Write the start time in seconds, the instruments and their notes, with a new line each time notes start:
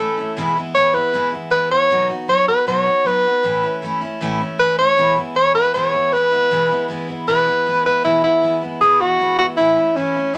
Already playing: steel-string acoustic guitar E3, tenor saxophone A4
0.00 steel-string acoustic guitar A3 C#4 E4
0.17 steel-string acoustic guitar A3 C#4 E4
0.36 steel-string acoustic guitar E2 B2 E3 G#3 B3 E4
0.55 steel-string acoustic guitar E3 G#3 B3 E4
0.75 steel-string acoustic guitar E3 G#3 B3 E4, tenor saxophone C#5
0.93 steel-string acoustic guitar E3 G#3 B3 E4, tenor saxophone B4
1.13 steel-string acoustic guitar E2 B2 E3 G#3 B3 E4
1.32 steel-string acoustic guitar E3 G#3 B3 E4
1.50 steel-string acoustic guitar E3 G#3 B3 E4, tenor saxophone B4
1.70 steel-string acoustic guitar E3 G#3 B3 E4, tenor saxophone C#5
1.90 steel-string acoustic guitar B2 F#3 B3 D#4 F#4
2.09 steel-string acoustic guitar B3 D#4 F#4
2.28 steel-string acoustic guitar F#3 B3 D#4 F#4, tenor saxophone C#5
2.48 steel-string acoustic guitar B3 D#4 F#4, tenor saxophone B4
2.67 steel-string acoustic guitar B2 F#3 B3 D#4 F#4, tenor saxophone C#5
2.85 steel-string acoustic guitar B3 D#4 F#4
3.04 steel-string acoustic guitar F#3 B3 D#4 F#4, tenor saxophone B4
3.25 steel-string acoustic guitar B3 D#4 F#4
3.43 steel-string acoustic guitar A2 E3 A3 C#4 E4
3.63 steel-string acoustic guitar A3 C#4 E4
3.82 steel-string acoustic guitar E3 A3 C#4 E4
4.01 steel-string acoustic guitar A3 C#4 E4
4.21 steel-string acoustic guitar A2 E3 A3 C#4 E4
4.39 steel-string acoustic guitar C#4 E4
4.58 steel-string acoustic guitar E3 A3 C#4 E4, tenor saxophone B4
4.78 steel-string acoustic guitar A3 C#4 E4, tenor saxophone C#5
4.97 steel-string acoustic guitar E2 B2 E3 G#3 B3 E4
5.16 steel-string acoustic guitar E3 G#3 B3 E4
5.35 steel-string acoustic guitar E3 G#3 B3 E4, tenor saxophone C#5
5.55 steel-string acoustic guitar E3 G#3 B3 E4, tenor saxophone B4
5.74 steel-string acoustic guitar E2 B2 E3 G#3 B3 E4, tenor saxophone C#5
5.93 steel-string acoustic guitar E3 G#3 B3 E4
6.12 steel-string acoustic guitar E3 G#3 B3 E4, tenor saxophone B4
6.31 steel-string acoustic guitar E3 G#3 B3 E4
6.50 steel-string acoustic guitar E2 B2 E3 G#3 B3 E4
6.69 steel-string acoustic guitar E3 G#3 B3 E4
6.88 steel-string acoustic guitar E3 G#3 B3 E4
7.08 steel-string acoustic guitar E3 G#3 B3 E4
7.27 steel-string acoustic guitar E2 B2 E3 G#3 B3 E4, tenor saxophone B4
7.46 steel-string acoustic guitar E3 G#3 B3 E4
7.66 steel-string acoustic guitar E3 G#3 B3 E4
7.85 steel-string acoustic guitar E3 G#3 B3 E4, tenor saxophone B4
8.04 steel-string acoustic guitar E2 B2 E3 G#3 B3 E4, tenor saxophone E4
8.22 steel-string acoustic guitar E3 G#3 B3 E4, tenor saxophone E4
8.42 steel-string acoustic guitar E3 G#3 B3 E4
8.61 steel-string acoustic guitar E3 G#3 B3 E4
8.81 steel-string acoustic guitar E2 B2 E3 G#3 B3 E4, tenor saxophone G#4
9.00 steel-string acoustic guitar E3 G#3 B3 E4, tenor saxophone F#4
9.19 steel-string acoustic guitar E3 G#3 B3 E4
9.38 steel-string acoustic guitar E3 G#3 B3 E4, tenor saxophone F#4
9.57 steel-string acoustic guitar A2 E3 A3 C#4 E4, tenor saxophone E4
9.77 steel-string acoustic guitar A3 C#4 E4
9.96 steel-string acoustic guitar E3 A3 C#4 E4, tenor saxophone C#4
10.15 steel-string acoustic guitar A3 C#4 E4
10.34 steel-string acoustic guitar A2 E3